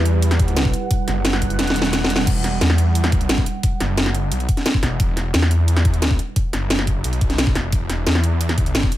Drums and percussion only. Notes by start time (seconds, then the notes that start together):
0.05 closed hi-hat
0.22 closed hi-hat
0.31 snare, closed hi-hat
0.40 kick, closed hi-hat
0.48 closed hi-hat
0.57 snare, closed hi-hat
0.65 kick
0.74 closed hi-hat
0.91 kick, closed hi-hat
1.08 snare, closed hi-hat
1.25 snare, closed hi-hat
1.33 snare
1.42 kick, closed hi-hat
1.50 closed hi-hat
1.59 snare, closed hi-hat
1.67 snare, closed hi-hat
1.76 closed hi-hat
1.82 snare, closed hi-hat
1.93 snare, closed hi-hat
2.04 snare
2.10 closed hi-hat
2.16 snare
2.27 kick, closed hi-hat, crash
2.44 snare, closed hi-hat
2.61 snare, closed hi-hat
2.70 snare
2.78 closed hi-hat
2.95 closed hi-hat
3.04 snare, closed hi-hat
3.12 kick, closed hi-hat
3.21 closed hi-hat
3.29 snare, closed hi-hat
3.38 kick
3.46 closed hi-hat
3.63 kick, closed hi-hat
3.80 snare, closed hi-hat
3.97 snare, closed hi-hat
4.06 snare
4.15 closed hi-hat
4.32 closed hi-hat
4.40 closed hi-hat
4.49 kick, closed hi-hat
4.57 snare, closed hi-hat
4.66 snare, closed hi-hat
4.74 kick
4.83 kick, snare, closed hi-hat
5.00 kick, closed hi-hat
5.17 snare, closed hi-hat
5.34 snare, closed hi-hat
5.42 snare
5.51 closed hi-hat
5.68 closed hi-hat
5.77 snare, closed hi-hat
5.85 kick, closed hi-hat
5.94 closed hi-hat
6.02 snare, closed hi-hat
6.11 kick
6.19 closed hi-hat
6.36 kick, closed hi-hat
6.53 snare, closed hi-hat
6.70 snare, closed hi-hat
6.79 snare
6.87 kick, closed hi-hat
7.04 closed hi-hat
7.13 closed hi-hat
7.21 kick, closed hi-hat
7.30 snare, closed hi-hat
7.38 snare, closed hi-hat
7.47 kick
7.55 kick, snare, closed hi-hat
7.72 kick, closed hi-hat
7.90 snare, closed hi-hat
8.07 snare, closed hi-hat
8.15 snare
8.24 closed hi-hat
8.41 closed hi-hat
8.49 snare, closed hi-hat
8.58 kick, closed hi-hat
8.66 closed hi-hat
8.75 snare, closed hi-hat
8.83 kick
8.92 closed hi-hat